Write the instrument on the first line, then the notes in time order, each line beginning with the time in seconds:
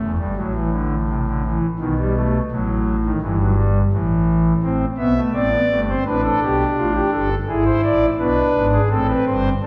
pipe organ
Already playing: A3
0.01 E1 E2
0.18 G1 G2 G3
0.36 A1 A2 F#3
0.55 E3
0.73 D3
1.08 C3
1.27 D3
1.45 E3
1.79 B1 B2 D#3
1.99 G3
2.16 A3
2.51 A1 A2 F#3
3.04 D#3
3.21 G1 G2 E3
3.39 F#3
3.56 G3
3.92 A1 A2 E3
4.63 A1 A2 C4
4.97 B1 B2 B3 E5
5.16 A3
5.33 A1 A2 C4 D5
5.51 B3
5.70 G1 G2 A3
5.89 C4 C5
6.05 A1 A2 D4 B4
6.24 A4
6.42 B1 B2 G4
6.78 A1 A2 F4
6.95 G4
7.12 G1 G2 A4
7.48 G#1 G#2 E4 G#4
7.65 C5
7.83 A1 A2 D5
8.19 B1 B2 D4 B4
8.54 G#1 G#2
8.73 G#4
8.90 A1 A2 C4 A4
9.08 B4
9.27 G1 G2 C5
9.63 A1 A2 D4 A4